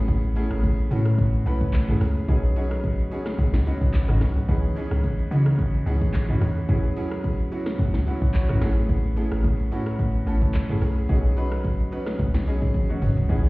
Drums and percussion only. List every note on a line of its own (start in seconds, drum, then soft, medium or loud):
0.08 kick loud
0.08 shaker medium
0.23 shaker soft
0.36 open hi-hat medium
0.36 shaker loud
0.51 cross-stick loud
0.51 shaker medium
0.63 kick loud
0.63 shaker medium
0.78 shaker medium
0.91 open hi-hat medium
0.91 shaker medium
1.05 cross-stick loud
1.05 shaker soft
1.18 kick loud
1.18 shaker medium
1.33 shaker medium
1.46 open hi-hat medium
1.46 shaker medium
1.61 kick loud
1.61 shaker medium
1.73 kick medium
1.73 clap loud
1.73 shaker medium
1.89 mid tom medium
1.89 shaker soft
2.01 cross-stick loud
2.01 open hi-hat medium
2.01 shaker loud
2.16 shaker medium
2.28 kick loud
2.28 shaker medium
2.43 shaker soft
2.56 open hi-hat medium
2.56 shaker loud
2.71 cross-stick loud
2.71 shaker medium
2.83 kick medium
2.83 shaker medium
2.99 shaker medium
3.11 open hi-hat medium
3.11 shaker medium
3.25 cross-stick loud
3.25 snare medium
3.25 shaker soft
3.39 kick loud
3.39 shaker medium
3.53 snare medium
3.53 shaker medium
3.66 open hi-hat medium
3.66 shaker medium
3.81 kick loud
3.81 shaker medium
3.94 kick medium
3.94 clap loud
3.94 shaker medium
4.09 cross-stick loud
4.09 mid tom medium
4.09 shaker soft
4.21 cross-stick loud
4.21 snare medium
4.21 open hi-hat medium
4.21 shaker loud
4.37 shaker medium
4.49 kick loud
4.49 shaker medium
4.63 shaker soft
4.76 open hi-hat medium
4.76 shaker loud
4.91 cross-stick loud
4.91 shaker medium
5.03 kick loud
5.03 shaker medium
5.19 shaker medium
5.32 open hi-hat medium
5.32 shaker medium
5.46 cross-stick loud
5.46 shaker soft
5.59 kick loud
5.59 shaker medium
5.74 shaker medium
5.87 open hi-hat medium
5.87 shaker medium
6.01 kick loud
6.01 shaker medium
6.14 kick medium
6.14 clap medium
6.14 shaker medium
6.29 mid tom loud
6.29 shaker soft
6.41 cross-stick medium
6.41 open hi-hat medium
6.41 shaker loud
6.57 shaker medium
6.69 kick loud
6.69 shaker medium
6.83 shaker medium
6.97 open hi-hat medium
6.97 shaker loud
7.11 cross-stick loud
7.11 shaker soft
7.24 kick loud
7.24 shaker medium
7.39 shaker medium
7.52 open hi-hat medium
7.52 shaker medium
7.66 cross-stick loud
7.66 snare medium
7.66 shaker soft
7.79 kick loud
7.79 shaker medium
7.94 snare medium
7.94 shaker medium
8.07 open hi-hat medium
8.07 shaker medium
8.21 kick loud
8.21 shaker medium
8.34 kick medium
8.34 clap loud
8.34 shaker medium
8.49 cross-stick loud
8.49 mid tom loud
8.49 shaker soft
8.62 cross-stick medium
8.62 snare medium
8.62 open hi-hat medium
8.62 shaker loud
8.77 shaker medium
8.89 kick loud
8.89 shaker medium
9.03 shaker medium
9.17 open hi-hat medium
9.17 shaker loud
9.32 cross-stick loud
9.32 shaker soft
9.44 kick loud
9.44 shaker medium
9.59 shaker medium
9.72 open hi-hat medium
9.72 shaker medium
9.86 cross-stick loud
9.86 shaker soft
9.99 kick loud
9.99 shaker medium
10.14 shaker medium
10.27 open hi-hat medium
10.27 shaker medium
10.41 kick loud
10.41 shaker medium
10.54 kick medium
10.54 clap loud
10.54 shaker medium
10.69 mid tom medium
10.69 shaker soft
10.82 cross-stick medium
10.82 open hi-hat medium
10.82 shaker loud
10.97 shaker medium
11.09 kick loud
11.09 shaker medium
11.24 shaker soft
11.37 open hi-hat medium
11.37 shaker loud
11.52 cross-stick loud
11.52 shaker medium
11.64 kick loud
11.64 shaker medium
11.79 shaker medium
11.92 open hi-hat medium
11.92 shaker medium
12.06 cross-stick loud
12.06 snare medium
12.06 shaker soft
12.19 kick loud
12.19 shaker medium
12.34 snare medium
12.34 shaker medium
12.47 open hi-hat medium
12.47 shaker medium
12.62 kick loud
12.62 shaker medium
12.74 kick medium
12.74 high tom medium
12.74 shaker medium
12.89 shaker soft
13.02 mid tom loud
13.02 open hi-hat medium
13.02 shaker loud
13.17 floor tom loud
13.17 shaker medium
13.29 kick loud
13.29 shaker medium
13.44 shaker soft